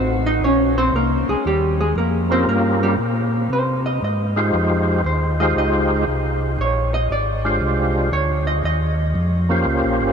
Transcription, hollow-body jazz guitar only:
0.00 0.25 C4 medium
0.00 0.25 C5 medium
0.26 0.42 D#4 medium
0.26 0.42 D#5 loud
0.44 0.77 C#4 medium
0.44 0.76 C#5 medium
0.78 0.93 C4 medium
0.78 0.93 C5 loud
0.95 1.28 A#3 medium
0.95 1.28 A#4 medium
1.29 1.45 G#3 medium
1.29 1.45 G#4 medium
1.47 1.79 G3 medium
1.47 1.79 G4 medium
1.81 1.96 G#3 medium
1.81 1.96 G#4 medium
1.98 2.31 A#3 medium
1.98 2.30 A#4 medium
2.32 2.47 C4 medium
2.32 2.47 C5 loud
2.49 2.82 A#3 medium
2.49 2.81 A#4 medium
2.83 2.93 G3 medium
2.83 2.93 G4 loud
3.53 3.85 C5 medium
3.86 4.02 D#5 medium
4.04 4.85 D#5 medium
5.06 5.39 C5 medium
5.40 5.56 D#5 medium
5.58 6.39 D#5 medium
6.61 6.93 C#5 medium
6.94 7.10 D#5 loud
7.12 7.93 D5 medium
8.13 8.46 C#5 medium
8.47 8.64 D#5 loud
8.65 9.47 D#5 medium

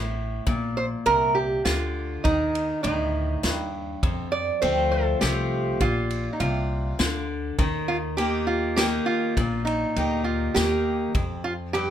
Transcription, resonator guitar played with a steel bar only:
0.00 0.13 C4 medium
0.77 0.85 C5 medium
1.06 1.37 A#4 medium
1.35 1.64 G4 medium
1.65 2.26 F4 medium
2.24 2.82 D#4 medium
2.83 3.69 D#4 medium
4.32 4.61 D5 medium
4.62 4.93 C5 loud
4.92 5.20 A4 medium
5.21 5.81 G4 medium
5.81 6.32 F4 medium
6.33 6.40 D#4 soft
6.40 7.25 F4 medium
7.88 7.96 F4 medium
8.17 8.48 G4 loud
8.47 8.78 F4 medium
8.76 8.85 G4 loud
9.06 9.64 F4 medium
9.65 10.24 D#4 medium
10.24 10.56 F4 medium
10.54 10.96 G4 medium
11.44 11.52 F4 medium
11.73 11.90 G4 loud

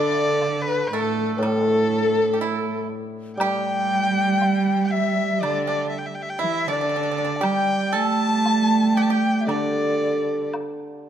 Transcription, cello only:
0.00 0.87 D3 medium
0.91 1.38 A2 medium
1.40 2.85 A2 medium
3.39 5.45 G3 medium
5.43 5.93 D3 medium
6.40 6.69 E3 medium
6.68 7.44 D3 medium
7.42 7.95 G3 medium
7.94 9.49 A3 medium
9.47 10.53 D3 medium

